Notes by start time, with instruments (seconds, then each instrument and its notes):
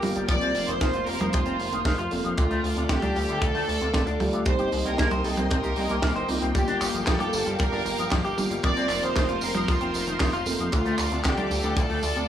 Already playing: analog synth pad A#3 F5 G5 D6
0.02 analog synth bass G1, tine electric piano A#3 D4 F4 G4, open hi-hat, high tom
0.16 analog synth bass G1, clean electric guitar G3, closed hi-hat
0.28 analog synth bass F1, clean electric guitar F3, tine electric piano A#3 C4 F4 A#4, analog synth pad C5 F5 C6, violin section D5, kick, closed hi-hat
0.41 analog synth bass C2, clean electric guitar C4, closed hi-hat
0.55 analog synth bass F1, open hi-hat
0.68 analog synth bass F1, clean electric guitar D#3, violin section C5, closed hi-hat
0.81 analog synth bass F1, clean electric guitar D#3, kick, snare, closed hi-hat
0.93 analog synth bass F1, clean electric guitar F4, closed hi-hat
1.07 analog synth bass F1, violin section A#4, open hi-hat
1.20 analog synth bass F1, clean electric guitar F3, closed hi-hat, high tom
1.33 analog synth bass F1, clean electric guitar F3, violin section F4, kick, closed hi-hat
1.46 analog synth bass F1, clean electric guitar C4, closed hi-hat
1.59 analog synth bass F1, open hi-hat
1.72 analog synth bass F1, clean electric guitar D#3, closed hi-hat
1.85 analog synth bass F1, clean electric guitar D#3, kick, snare, open hi-hat
1.98 analog synth bass F1, clean electric guitar F4, closed hi-hat
2.11 analog synth bass F1, tine electric piano A#3 C4 F4 A4, open hi-hat
2.24 analog synth bass F1, clean electric guitar F3, closed hi-hat
2.37 analog synth bass D2, clean electric guitar D3, tine electric piano A3 D4 F4 A4, violin section F4, analog synth pad A4 D5 D6, kick, closed hi-hat
2.51 analog synth bass D2, clean electric guitar A3, closed hi-hat
2.64 analog synth bass D2, open hi-hat
2.77 analog synth bass D2, clean electric guitar C3, closed hi-hat
2.89 analog synth bass D2, clean electric guitar C3, violin section G4, kick, snare, closed hi-hat
3.02 analog synth bass D2, clean electric guitar D4, closed hi-hat, high tom
3.16 analog synth bass D2, open hi-hat
3.29 analog synth bass D2, clean electric guitar D3, closed hi-hat
3.42 analog synth bass D2, clean electric guitar D3, violin section A4, kick, closed hi-hat
3.55 analog synth bass D2, clean electric guitar A3, open hi-hat
3.68 analog synth bass D2, open hi-hat
3.81 analog synth bass D2, clean electric guitar C3, closed hi-hat
3.94 analog synth bass D1, clean electric guitar C3, kick, snare, closed hi-hat
4.07 analog synth bass D2, clean electric guitar D4, closed hi-hat
4.20 analog synth bass D2, tine electric piano A3 D4 F4 G4, open hi-hat, high tom
4.33 analog synth bass D2, clean electric guitar D3, closed hi-hat
4.46 analog synth bass C2, analog synth pad A#3 D#5 G5 C6, tine electric piano A#3 C4 D#4 G4, clean electric guitar C4, violin section C5, kick, closed hi-hat
4.59 analog synth bass G1, clean electric guitar G4, closed hi-hat
4.72 analog synth bass C2, open hi-hat
4.85 analog synth bass C2, clean electric guitar A#3, violin section A#4, closed hi-hat
4.98 analog synth bass C2, clean electric guitar A#3, kick, snare, closed hi-hat
5.11 analog synth bass C2, clean electric guitar C5, closed hi-hat, high tom
5.24 analog synth bass C2, violin section A4, open hi-hat
5.37 analog synth bass C2, clean electric guitar C4, closed hi-hat, high tom
5.51 analog synth bass C2, clean electric guitar C4, violin section A#4, kick, closed hi-hat
5.64 analog synth bass C2, clean electric guitar G4, closed hi-hat
5.76 analog synth bass C2, open hi-hat
5.90 analog synth bass C2, clean electric guitar A#3, closed hi-hat
6.02 analog synth bass C2, clean electric guitar A#3, kick, snare, open hi-hat
6.16 analog synth bass G1, clean electric guitar C5, closed hi-hat
6.29 analog synth bass C2, tine electric piano A#3 C4 D#4 F4, open hi-hat
6.42 analog synth bass C2, clean electric guitar C4, closed hi-hat
6.55 analog synth bass G1, clean electric guitar G3, tine electric piano A#3 D4 F4 G4, violin section G4, analog synth pad F5 D6, kick, closed hi-hat, tambourine
6.68 analog synth bass G1, clean electric guitar D4, closed hi-hat, tambourine
6.81 analog synth bass G1, clap, open hi-hat, tambourine
6.94 analog synth bass G1, clean electric guitar F3, closed hi-hat, tambourine
7.07 analog synth bass G1, clean electric guitar F3, violin section A4, kick, snare, clap, closed hi-hat, tambourine
7.19 analog synth bass G1, clean electric guitar G4, closed hi-hat, high tom
7.33 analog synth bass G1, open hi-hat, tambourine
7.46 analog synth bass G1, clean electric guitar G3, closed hi-hat
7.59 analog synth bass G1, clean electric guitar G3, violin section A#4, kick, closed hi-hat, tambourine
7.72 analog synth bass G1, clean electric guitar D4, open hi-hat
7.85 analog synth bass G1, open hi-hat, tambourine
7.98 analog synth bass G1, clean electric guitar F3, closed hi-hat, tambourine
8.11 analog synth bass G2, clean electric guitar F3, kick, snare, clap, closed hi-hat, tambourine
8.25 analog synth bass G1, clean electric guitar G4, closed hi-hat, tambourine
8.37 analog synth bass G1, tine electric piano A#3 D4 F4 G4, open hi-hat, high tom, tambourine
8.50 analog synth bass G1, clean electric guitar G3, closed hi-hat, tambourine
8.63 analog synth bass F1, clean electric guitar F3, tine electric piano A#3 C4 F4 A#4, analog synth pad A#4 C5 C6, violin section D5, kick, closed hi-hat, tambourine
8.76 analog synth bass C2, clean electric guitar C4, closed hi-hat, tambourine
8.89 analog synth bass F1, clap, open hi-hat, tambourine
9.03 analog synth bass F1, clean electric guitar D#3, violin section C5, closed hi-hat, tambourine
9.15 analog synth bass F1, clean electric guitar D#3, kick, snare, clap, closed hi-hat, tambourine
9.29 analog synth bass F1, clean electric guitar F4, closed hi-hat
9.41 analog synth bass F1, violin section A#4, open hi-hat, tambourine
9.55 analog synth bass F1, clean electric guitar F3, closed hi-hat, high tom, tambourine
9.68 analog synth bass F1, clean electric guitar F3, violin section F4, kick, closed hi-hat, tambourine
9.81 analog synth bass F1, clean electric guitar C4, closed hi-hat
9.94 analog synth bass F1, open hi-hat, tambourine
10.07 analog synth bass F1, clean electric guitar D#3, closed hi-hat, tambourine
10.20 analog synth bass F1, clean electric guitar D#3, kick, snare, clap, open hi-hat, tambourine
10.33 analog synth bass F1, clean electric guitar F4, closed hi-hat, tambourine
10.46 analog synth bass F1, tine electric piano A#3 C4 F4 A4, open hi-hat, tambourine
10.59 analog synth bass F1, clean electric guitar F3, closed hi-hat, tambourine
10.72 analog synth bass D2, clean electric guitar D3, tine electric piano A3 D4, violin section F4, analog synth pad A4 D5 D6, kick, closed hi-hat, tambourine
10.85 analog synth bass D2, clean electric guitar A3, closed hi-hat, tambourine
10.98 analog synth bass D2, clap, open hi-hat, tambourine
11.11 analog synth bass D2, clean electric guitar C3, closed hi-hat, tambourine
11.24 analog synth bass D2, clean electric guitar C3, violin section G4, kick, snare, clap, closed hi-hat, tambourine
11.37 analog synth bass D2, clean electric guitar D4, closed hi-hat, high tom
11.50 analog synth bass D2, open hi-hat, tambourine
11.63 analog synth bass D2, clean electric guitar D3, closed hi-hat, tambourine
11.77 analog synth bass D2, clean electric guitar D3, violin section A4, kick, closed hi-hat, tambourine
11.90 analog synth bass D2, clean electric guitar A3, open hi-hat
12.03 analog synth bass D2, open hi-hat, tambourine
12.16 analog synth bass D2, clean electric guitar C3, closed hi-hat, tambourine